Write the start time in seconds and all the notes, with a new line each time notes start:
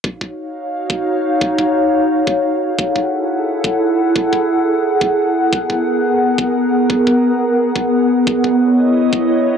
0.04 D#4 F#4 C#5 F5, kick
0.21 kick
0.90 kick
1.41 kick
1.58 kick
2.27 kick
2.61 E4 G#4 A4 F#5
2.79 kick
2.96 kick
3.64 kick
4.16 kick
4.33 kick
5.01 kick
5.36 B3 A#4
5.53 kick
5.70 kick
6.38 kick
6.90 kick
7.07 kick
7.76 kick
8.27 E4 C#5 D#5, kick
8.44 kick
9.13 kick